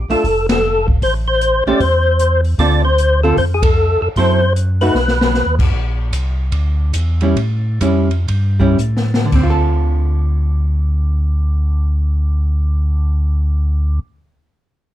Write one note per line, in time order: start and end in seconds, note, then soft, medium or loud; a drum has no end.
0.08 0.16 A#1 soft
0.08 0.22 A3 soft
0.08 0.23 D4 medium
0.08 0.23 F4 medium
0.08 0.47 A4 medium
0.08 open hi-hat soft
0.24 0.98 F1 medium
0.24 kick soft
0.24 open hi-hat soft
0.49 0.87 A4 medium
0.49 snare medium
0.49 ride medium
0.88 kick medium
1.02 1.62 A1 medium
1.02 1.14 C5 medium
1.02 kick soft
1.02 open hi-hat soft
1.28 1.64 C5 medium
1.41 closed hi-hat soft
1.66 1.73 A1 soft
1.66 1.79 A3 medium
1.66 1.80 C#4 medium
1.66 1.80 G4 medium
1.66 1.80 C5 medium
1.66 1.82 D5 medium
1.80 2.55 E2 medium
1.80 2.41 C5 medium
1.80 kick soft
1.80 open hi-hat soft
2.19 closed hi-hat medium
2.44 open hi-hat soft
2.58 3.33 D2 medium
2.58 2.81 D3 medium
2.58 2.82 C4 medium
2.58 2.82 F4 medium
2.58 2.82 A4 medium
2.58 2.82 D5 loud
2.58 kick soft
2.58 open hi-hat soft
2.85 3.21 C5 medium
2.98 closed hi-hat soft
3.23 3.36 D3 medium
3.23 3.36 C4 soft
3.23 3.37 F4 medium
3.23 3.37 A4 medium
3.37 3.97 F2 medium
3.37 3.45 C5 medium
3.37 kick soft
3.37 open hi-hat soft
3.54 3.63 G#4 medium
3.62 4.01 A4 medium
3.62 kick medium
3.62 ride medium
4.02 4.09 F2 soft
4.02 4.08 A4 medium
4.16 4.91 F#2 medium
4.16 4.39 F#3 medium
4.16 4.39 C4 medium
4.16 4.39 E4 medium
4.16 4.40 A4 soft
4.16 4.53 C5 medium
4.16 kick soft
4.16 open hi-hat soft
4.56 closed hi-hat soft
4.81 4.94 A3 medium
4.81 4.94 D#4 medium
4.81 4.94 F#4 medium
4.81 5.55 B4 medium
4.81 open hi-hat soft
4.94 5.43 B1 medium
4.94 snare soft
5.08 snare medium
5.21 snare medium
5.34 snare medium
5.46 5.59 D#2 soft
5.59 5.72 F2 medium
5.59 kick medium
5.59 crash medium
5.73 6.11 A#1 medium
5.73 kick soft
6.12 6.51 C2 medium
6.12 kick soft
6.12 hi-hat pedal soft
6.12 ride medium
6.52 6.92 D2 medium
6.52 kick soft
6.52 ride soft
6.93 7.35 E2 medium
6.93 kick soft
6.93 hi-hat pedal medium
6.93 ride medium
7.21 7.35 G3 medium
7.21 7.36 C#4 medium
7.21 7.36 E4 medium
7.21 ride soft
7.36 7.80 A2 medium
7.36 kick soft
7.36 ride medium
7.81 8.26 F2 medium
7.81 8.08 G3 medium
7.81 8.08 C#4 medium
7.81 8.08 E4 medium
7.81 kick soft
7.81 hi-hat pedal soft
7.81 ride medium
8.11 ride soft
8.28 8.77 G2 medium
8.28 kick soft
8.28 ride medium
8.59 8.76 G3 medium
8.59 8.77 C#4 medium
8.59 8.77 E4 medium
8.59 kick soft
8.78 9.31 A2 medium
8.78 hi-hat pedal medium
8.97 snare soft
9.14 snare medium
9.25 13.97 D3 medium
9.32 13.99 D2 medium
9.32 14.07 C4 medium
9.32 kick soft
9.32 crash medium
9.43 14.15 F4 soft
9.50 14.22 A4 medium